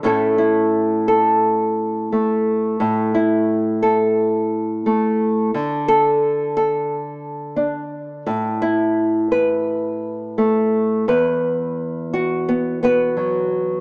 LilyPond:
\new Staff \with { instrumentName = "Nylon-string guitar" } { \time 4/4 \key a \mixolydian \tempo 4 = 87 << { <a cis' e' a'>8 e'4 a'2~ a'8 | r8 e'4 a'2~ a'8 | r8 a'4 a'2~ a'8 | r8 e'4 b'2~ b'8 |
b'4. fis'8 b8 <b fis' b'>4. | } \\ { a,2. a4 | a,2. a4 | d2. d'4 | a,2. a4 |
e,2. fis4 | } >> }